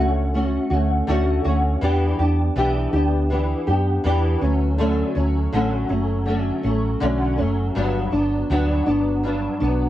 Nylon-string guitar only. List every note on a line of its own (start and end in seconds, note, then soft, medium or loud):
0.00 0.33 A3 medium
0.00 0.34 C#4 soft
0.00 0.33 F#4 medium
0.34 0.71 A3 medium
0.34 0.71 C#4 medium
0.34 0.69 F#4 medium
0.70 1.07 A3 soft
0.70 1.08 C#4 soft
0.70 1.08 F#4 medium
1.07 1.45 D3 medium
1.07 1.45 A3 medium
1.07 1.45 C#4 medium
1.07 1.43 F#4 medium
1.44 1.82 A3 soft
1.44 1.83 C#4 medium
1.44 1.82 F#4 medium
1.81 2.19 E3 medium
1.81 2.20 B3 medium
1.81 2.20 D4 medium
1.81 2.18 G4 medium
2.19 2.55 B3 soft
2.19 2.56 D4 soft
2.19 2.56 G4 medium
2.56 2.93 E3 medium
2.56 2.94 B3 medium
2.56 2.94 D4 medium
2.56 2.92 G4 medium
2.93 3.31 D4 medium
2.93 3.30 G4 medium
2.97 3.30 B3 soft
3.30 3.68 E3 medium
3.30 3.68 B3 medium
3.30 3.68 D4 medium
3.30 3.66 G4 medium
3.67 4.04 B3 soft
3.67 4.04 D4 medium
3.67 4.05 G4 medium
4.04 4.42 E3 medium
4.04 4.42 B3 medium
4.04 4.41 D4 medium
4.04 4.43 G4 loud
4.41 4.78 F#3 soft
4.41 4.79 A3 soft
4.41 4.79 C#4 medium
4.78 5.16 D3 medium
4.78 5.16 F#3 medium
4.78 5.16 A3 medium
4.78 5.14 C#4 medium
5.15 5.52 F#3 soft
5.15 5.53 A3 medium
5.15 5.53 C#4 medium
5.53 5.90 D3 medium
5.53 5.91 F#3 medium
5.53 5.90 A3 medium
5.53 5.88 C#4 medium
5.89 6.26 F#3 soft
5.89 6.27 A3 medium
5.89 6.27 C#4 medium
6.26 6.64 D3 medium
6.26 6.65 F#3 medium
6.26 6.64 A3 medium
6.30 6.62 C#4 medium
6.63 7.01 A3 medium
6.63 7.01 C#4 medium
6.67 7.00 F#3 soft
7.00 7.38 D3 medium
7.00 7.39 F#3 medium
7.00 7.38 A3 medium
7.00 7.36 C#4 medium
7.38 7.75 F#3 soft
7.38 7.76 A3 soft
7.38 7.75 C#4 medium
7.75 8.13 G2 medium
7.75 8.13 F#3 medium
7.75 8.13 B3 medium
7.75 8.11 D4 medium
8.12 8.49 F#3 soft
8.12 8.50 B3 soft
8.12 8.50 D4 medium
8.50 8.87 G2 medium
8.50 8.88 F#3 medium
8.50 8.87 B3 medium
8.50 8.85 D4 medium
8.86 9.24 F#3 soft
8.86 9.25 B3 medium
8.86 9.24 D4 medium
9.23 9.61 G2 medium
9.23 9.62 F#3 medium
9.23 9.61 B3 medium
9.23 9.59 D4 medium
9.60 9.89 B3 medium
9.60 9.89 D4 medium
9.64 9.89 F#3 soft